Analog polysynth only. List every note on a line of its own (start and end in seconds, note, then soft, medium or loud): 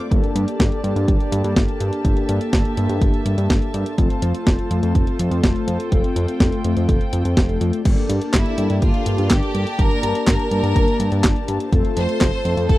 0.11 0.81 A#3 medium
0.11 0.81 D4 medium
0.11 0.81 G4 medium
0.11 0.81 A4 loud
0.84 2.02 A#3 medium
0.84 2.02 D4 medium
0.84 2.02 G4 medium
0.84 2.02 A4 medium
2.05 2.74 A#3 medium
2.05 2.74 D4 medium
2.05 2.74 G4 medium
2.05 2.74 A4 loud
2.77 3.95 A#3 medium
2.77 3.95 D4 medium
2.77 3.95 G4 medium
2.77 3.95 A4 loud
3.98 4.68 A3 medium
3.98 4.68 C4 medium
3.98 4.68 F4 medium
3.98 4.68 A4 loud
4.71 5.89 A3 medium
4.71 5.89 C4 medium
4.71 5.89 F4 medium
4.71 5.89 A4 loud
5.92 6.62 A3 medium
5.92 6.62 C4 medium
5.92 6.62 F4 medium
5.92 6.62 A4 loud
6.64 7.82 A3 medium
6.64 7.82 C4 medium
6.64 7.82 F4 medium
6.64 7.82 A4 loud
7.85 8.55 A#3 medium
7.85 8.55 D4 medium
7.85 8.55 G4 medium
7.85 8.55 A4 loud
8.58 9.76 A#3 medium
8.58 9.76 D4 medium
8.58 9.76 G4 medium
8.58 9.76 A4 loud
9.79 10.49 A#3 medium
9.79 10.49 D4 medium
9.79 10.49 G4 medium
9.79 10.49 A5 loud
10.51 11.69 A#3 medium
10.51 11.69 D4 medium
10.51 11.69 G4 medium
10.51 11.69 A5 loud
11.72 12.42 A3 medium
11.72 12.42 C4 medium
11.72 12.42 F4 medium
11.72 12.42 A4 loud
12.45 12.78 A3 medium
12.45 12.78 C4 medium
12.45 12.78 F4 medium
12.45 12.78 A4 loud